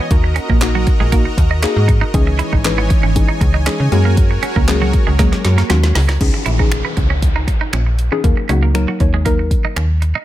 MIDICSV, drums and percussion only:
0, 0, Header, 1, 2, 480
1, 0, Start_track
1, 0, Tempo, 508475
1, 99, Time_signature, 4, 2, 24, 8
1, 9673, End_track
2, 0, Start_track
2, 0, Title_t, "Drums"
2, 101, Note_on_c, 9, 36, 127
2, 101, Note_on_c, 9, 42, 98
2, 195, Note_off_c, 9, 36, 0
2, 196, Note_off_c, 9, 42, 0
2, 339, Note_on_c, 9, 42, 90
2, 433, Note_off_c, 9, 42, 0
2, 466, Note_on_c, 9, 36, 89
2, 560, Note_off_c, 9, 36, 0
2, 577, Note_on_c, 9, 38, 89
2, 580, Note_on_c, 9, 39, 114
2, 580, Note_on_c, 9, 42, 113
2, 672, Note_off_c, 9, 38, 0
2, 674, Note_off_c, 9, 42, 0
2, 675, Note_off_c, 9, 39, 0
2, 819, Note_on_c, 9, 42, 74
2, 822, Note_on_c, 9, 36, 100
2, 913, Note_off_c, 9, 42, 0
2, 917, Note_off_c, 9, 36, 0
2, 1060, Note_on_c, 9, 42, 103
2, 1061, Note_on_c, 9, 36, 93
2, 1155, Note_off_c, 9, 36, 0
2, 1155, Note_off_c, 9, 42, 0
2, 1298, Note_on_c, 9, 36, 84
2, 1302, Note_on_c, 9, 42, 79
2, 1393, Note_off_c, 9, 36, 0
2, 1396, Note_off_c, 9, 42, 0
2, 1537, Note_on_c, 9, 38, 101
2, 1537, Note_on_c, 9, 42, 97
2, 1540, Note_on_c, 9, 39, 127
2, 1631, Note_off_c, 9, 38, 0
2, 1631, Note_off_c, 9, 42, 0
2, 1634, Note_off_c, 9, 39, 0
2, 1780, Note_on_c, 9, 36, 100
2, 1781, Note_on_c, 9, 42, 80
2, 1874, Note_off_c, 9, 36, 0
2, 1875, Note_off_c, 9, 42, 0
2, 2020, Note_on_c, 9, 36, 127
2, 2020, Note_on_c, 9, 42, 98
2, 2115, Note_off_c, 9, 36, 0
2, 2115, Note_off_c, 9, 42, 0
2, 2258, Note_on_c, 9, 42, 89
2, 2353, Note_off_c, 9, 42, 0
2, 2386, Note_on_c, 9, 36, 91
2, 2480, Note_off_c, 9, 36, 0
2, 2498, Note_on_c, 9, 38, 89
2, 2501, Note_on_c, 9, 39, 121
2, 2501, Note_on_c, 9, 42, 116
2, 2592, Note_off_c, 9, 38, 0
2, 2595, Note_off_c, 9, 39, 0
2, 2595, Note_off_c, 9, 42, 0
2, 2740, Note_on_c, 9, 42, 72
2, 2742, Note_on_c, 9, 36, 102
2, 2834, Note_off_c, 9, 42, 0
2, 2837, Note_off_c, 9, 36, 0
2, 2981, Note_on_c, 9, 36, 92
2, 2982, Note_on_c, 9, 42, 104
2, 3075, Note_off_c, 9, 36, 0
2, 3076, Note_off_c, 9, 42, 0
2, 3219, Note_on_c, 9, 36, 87
2, 3222, Note_on_c, 9, 42, 80
2, 3313, Note_off_c, 9, 36, 0
2, 3316, Note_off_c, 9, 42, 0
2, 3458, Note_on_c, 9, 38, 102
2, 3459, Note_on_c, 9, 42, 96
2, 3461, Note_on_c, 9, 39, 127
2, 3553, Note_off_c, 9, 38, 0
2, 3553, Note_off_c, 9, 42, 0
2, 3556, Note_off_c, 9, 39, 0
2, 3701, Note_on_c, 9, 42, 82
2, 3795, Note_off_c, 9, 42, 0
2, 3939, Note_on_c, 9, 42, 98
2, 3940, Note_on_c, 9, 36, 123
2, 4034, Note_off_c, 9, 42, 0
2, 4035, Note_off_c, 9, 36, 0
2, 4179, Note_on_c, 9, 42, 87
2, 4273, Note_off_c, 9, 42, 0
2, 4306, Note_on_c, 9, 36, 87
2, 4400, Note_off_c, 9, 36, 0
2, 4419, Note_on_c, 9, 38, 96
2, 4422, Note_on_c, 9, 39, 115
2, 4422, Note_on_c, 9, 42, 116
2, 4513, Note_off_c, 9, 38, 0
2, 4516, Note_off_c, 9, 42, 0
2, 4517, Note_off_c, 9, 39, 0
2, 4658, Note_on_c, 9, 42, 75
2, 4662, Note_on_c, 9, 36, 101
2, 4753, Note_off_c, 9, 42, 0
2, 4756, Note_off_c, 9, 36, 0
2, 4900, Note_on_c, 9, 36, 93
2, 4900, Note_on_c, 9, 38, 63
2, 4900, Note_on_c, 9, 42, 105
2, 4994, Note_off_c, 9, 38, 0
2, 4994, Note_off_c, 9, 42, 0
2, 4995, Note_off_c, 9, 36, 0
2, 5028, Note_on_c, 9, 38, 63
2, 5123, Note_off_c, 9, 38, 0
2, 5141, Note_on_c, 9, 38, 80
2, 5141, Note_on_c, 9, 42, 78
2, 5235, Note_off_c, 9, 38, 0
2, 5236, Note_off_c, 9, 42, 0
2, 5269, Note_on_c, 9, 38, 70
2, 5363, Note_off_c, 9, 38, 0
2, 5379, Note_on_c, 9, 42, 93
2, 5381, Note_on_c, 9, 38, 94
2, 5473, Note_off_c, 9, 42, 0
2, 5475, Note_off_c, 9, 38, 0
2, 5508, Note_on_c, 9, 38, 87
2, 5602, Note_off_c, 9, 38, 0
2, 5621, Note_on_c, 9, 38, 111
2, 5621, Note_on_c, 9, 46, 78
2, 5715, Note_off_c, 9, 38, 0
2, 5715, Note_off_c, 9, 46, 0
2, 5747, Note_on_c, 9, 38, 98
2, 5842, Note_off_c, 9, 38, 0
2, 5859, Note_on_c, 9, 36, 117
2, 5859, Note_on_c, 9, 42, 92
2, 5859, Note_on_c, 9, 49, 93
2, 5954, Note_off_c, 9, 36, 0
2, 5954, Note_off_c, 9, 42, 0
2, 5954, Note_off_c, 9, 49, 0
2, 6098, Note_on_c, 9, 42, 85
2, 6192, Note_off_c, 9, 42, 0
2, 6225, Note_on_c, 9, 36, 86
2, 6319, Note_off_c, 9, 36, 0
2, 6339, Note_on_c, 9, 42, 109
2, 6340, Note_on_c, 9, 26, 109
2, 6434, Note_off_c, 9, 26, 0
2, 6434, Note_off_c, 9, 42, 0
2, 6578, Note_on_c, 9, 42, 69
2, 6581, Note_on_c, 9, 36, 97
2, 6673, Note_off_c, 9, 42, 0
2, 6675, Note_off_c, 9, 36, 0
2, 6819, Note_on_c, 9, 36, 86
2, 6820, Note_on_c, 9, 42, 100
2, 6914, Note_off_c, 9, 36, 0
2, 6914, Note_off_c, 9, 42, 0
2, 7056, Note_on_c, 9, 36, 82
2, 7060, Note_on_c, 9, 42, 74
2, 7151, Note_off_c, 9, 36, 0
2, 7154, Note_off_c, 9, 42, 0
2, 7296, Note_on_c, 9, 42, 92
2, 7299, Note_on_c, 9, 26, 114
2, 7391, Note_off_c, 9, 42, 0
2, 7393, Note_off_c, 9, 26, 0
2, 7539, Note_on_c, 9, 42, 78
2, 7633, Note_off_c, 9, 42, 0
2, 7779, Note_on_c, 9, 36, 118
2, 7780, Note_on_c, 9, 42, 94
2, 7873, Note_off_c, 9, 36, 0
2, 7874, Note_off_c, 9, 42, 0
2, 8017, Note_on_c, 9, 42, 86
2, 8111, Note_off_c, 9, 42, 0
2, 8259, Note_on_c, 9, 26, 107
2, 8259, Note_on_c, 9, 42, 112
2, 8353, Note_off_c, 9, 42, 0
2, 8354, Note_off_c, 9, 26, 0
2, 8497, Note_on_c, 9, 42, 68
2, 8500, Note_on_c, 9, 36, 93
2, 8591, Note_off_c, 9, 42, 0
2, 8594, Note_off_c, 9, 36, 0
2, 8739, Note_on_c, 9, 36, 84
2, 8739, Note_on_c, 9, 42, 103
2, 8833, Note_off_c, 9, 36, 0
2, 8833, Note_off_c, 9, 42, 0
2, 8976, Note_on_c, 9, 36, 84
2, 8979, Note_on_c, 9, 42, 74
2, 9070, Note_off_c, 9, 36, 0
2, 9073, Note_off_c, 9, 42, 0
2, 9217, Note_on_c, 9, 42, 91
2, 9220, Note_on_c, 9, 26, 117
2, 9311, Note_off_c, 9, 42, 0
2, 9314, Note_off_c, 9, 26, 0
2, 9460, Note_on_c, 9, 42, 76
2, 9554, Note_off_c, 9, 42, 0
2, 9673, End_track
0, 0, End_of_file